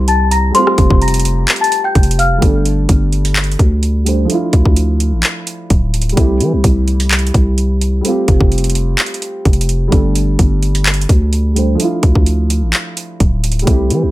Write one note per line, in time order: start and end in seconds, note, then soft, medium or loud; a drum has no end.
0.00 0.52 C2 loud
0.00 0.48 G3 medium
0.00 0.50 A3 medium
0.00 0.51 C4 medium
0.00 0.52 E4 medium
0.00 0.53 G4 medium
0.08 0.26 A5 medium
0.08 0.27 A6 medium
0.08 closed hi-hat medium
0.31 0.50 A#5 medium
0.31 0.50 A#6 medium
0.31 closed hi-hat medium
0.51 2.36 G3 medium
0.51 2.38 A3 medium
0.51 0.99 C6 loud
0.51 closed hi-hat medium
0.55 2.39 C4 medium
0.55 2.40 F4 medium
0.55 0.99 C5 medium
0.60 2.41 G4 medium
0.67 cross-stick medium
0.78 0.90 F1 loud
0.78 kick loud
0.78 closed hi-hat medium
0.90 1.46 F1 loud
0.90 kick loud
1.02 1.57 A#5 medium
1.02 1.58 A#6 medium
1.02 closed hi-hat soft
1.08 closed hi-hat medium
1.14 closed hi-hat medium
1.20 closed hi-hat medium
1.25 closed hi-hat medium
1.48 clap loud
1.48 closed hi-hat medium
1.56 closed hi-hat medium
1.61 1.79 A5 medium
1.61 1.80 A6 medium
1.61 closed hi-hat medium
1.72 closed hi-hat medium
1.84 2.17 G5 medium
1.84 2.17 G6 medium
1.95 2.40 F1 loud
1.95 kick medium
1.95 closed hi-hat soft
2.03 closed hi-hat medium
2.11 closed hi-hat medium
2.19 2.37 F5 medium
2.19 2.38 F6 medium
2.19 closed hi-hat medium
2.38 4.01 G3 medium
2.38 4.02 A3 medium
2.42 2.87 G1 loud
2.42 4.03 D4 medium
2.42 4.04 G4 medium
2.42 kick loud
2.42 closed hi-hat medium
2.46 4.05 A4 medium
2.65 closed hi-hat medium
2.89 3.57 G1 loud
2.89 kick medium
2.89 closed hi-hat medium
3.13 closed hi-hat soft
3.25 closed hi-hat medium
3.36 clap loud
3.36 closed hi-hat medium
3.44 closed hi-hat medium
3.52 closed hi-hat medium
3.59 4.27 D2 loud
3.59 kick loud
3.59 closed hi-hat medium
3.83 closed hi-hat medium
4.04 4.29 G3 medium
4.04 4.26 A3 soft
4.04 4.28 D4 soft
4.04 4.30 G4 soft
4.04 closed hi-hat medium
4.08 4.31 C5 medium
4.25 6.11 F3 medium
4.25 6.12 A3 medium
4.29 6.13 D4 medium
4.29 6.14 E4 medium
4.29 closed hi-hat medium
4.34 6.16 F4 medium
4.53 4.65 D2 loud
4.53 kick loud
4.53 closed hi-hat medium
4.65 5.14 D2 loud
4.65 kick medium
4.76 closed hi-hat medium
5.00 closed hi-hat medium
5.12 5.23 A1 loud
5.23 clap loud
5.23 closed hi-hat medium
5.47 closed hi-hat medium
5.70 6.15 D1 loud
5.70 kick medium
5.70 closed hi-hat medium
5.94 closed hi-hat medium
6.02 closed hi-hat medium
6.09 7.98 G3 medium
6.09 closed hi-hat soft
6.14 6.42 C2 loud
6.14 8.00 A3 medium
6.14 8.01 C4 medium
6.14 kick loud
6.14 closed hi-hat medium
6.19 8.02 E4 medium
6.19 8.03 G4 medium
6.40 6.55 E3 loud
6.40 closed hi-hat medium
6.53 6.63 C2 loud
6.64 7.32 C2 loud
6.64 kick medium
6.64 closed hi-hat medium
6.88 closed hi-hat soft
7.00 closed hi-hat medium
7.11 clap loud
7.11 closed hi-hat medium
7.19 closed hi-hat medium
7.27 closed hi-hat medium
7.34 8.02 C2 loud
7.34 kick loud
7.34 closed hi-hat medium
7.58 closed hi-hat medium
7.81 closed hi-hat medium
8.01 9.86 G3 medium
8.01 9.88 A3 medium
8.01 closed hi-hat medium
8.06 9.89 C4 medium
8.06 9.90 F4 medium
8.10 9.91 G4 medium
8.28 8.40 F1 loud
8.28 kick loud
8.28 closed hi-hat medium
8.41 8.96 F1 loud
8.41 kick medium
8.52 closed hi-hat soft
8.58 closed hi-hat medium
8.64 closed hi-hat medium
8.70 closed hi-hat medium
8.75 closed hi-hat medium
8.99 clap loud
8.99 closed hi-hat medium
9.06 closed hi-hat medium
9.14 closed hi-hat medium
9.22 closed hi-hat medium
9.45 9.90 F1 loud
9.45 kick medium
9.45 closed hi-hat soft
9.53 closed hi-hat medium
9.61 closed hi-hat medium
9.69 closed hi-hat medium
9.88 11.51 G3 medium
9.88 11.52 A3 medium
9.92 10.37 G1 loud
9.92 11.53 D4 medium
9.92 11.54 G4 medium
9.92 kick loud
9.92 closed hi-hat medium
9.97 11.55 A4 medium
10.15 closed hi-hat medium
10.39 11.07 G1 loud
10.39 kick medium
10.39 closed hi-hat medium
10.63 closed hi-hat soft
10.75 closed hi-hat medium
10.86 clap loud
10.86 closed hi-hat medium
10.94 closed hi-hat medium
11.01 closed hi-hat medium
11.09 11.77 D2 loud
11.09 kick loud
11.09 closed hi-hat medium
11.33 closed hi-hat medium
11.54 11.79 G3 medium
11.54 11.76 A3 soft
11.54 11.78 D4 soft
11.54 11.80 G4 soft
11.54 closed hi-hat medium
11.58 11.81 C5 medium
11.75 13.61 F3 medium
11.75 13.62 A3 medium
11.79 13.63 D4 medium
11.79 13.64 E4 medium
11.79 closed hi-hat medium
11.84 13.66 F4 medium
12.03 12.15 D2 loud
12.03 kick loud
12.03 closed hi-hat medium
12.15 12.64 D2 loud
12.15 kick medium
12.26 closed hi-hat medium
12.50 closed hi-hat medium
12.62 12.73 A1 medium
12.73 clap loud
12.73 closed hi-hat medium
12.97 closed hi-hat medium
13.20 13.65 D1 loud
13.20 kick medium
13.20 closed hi-hat medium
13.44 closed hi-hat medium
13.52 closed hi-hat medium
13.59 14.11 G3 medium
13.59 closed hi-hat soft
13.64 13.92 C2 loud
13.64 14.11 A3 medium
13.64 14.11 C4 medium
13.64 kick loud
13.64 closed hi-hat medium
13.69 14.11 E4 medium
13.69 14.11 G4 medium
13.90 14.04 E3 loud
13.90 closed hi-hat medium
14.03 14.11 C2 loud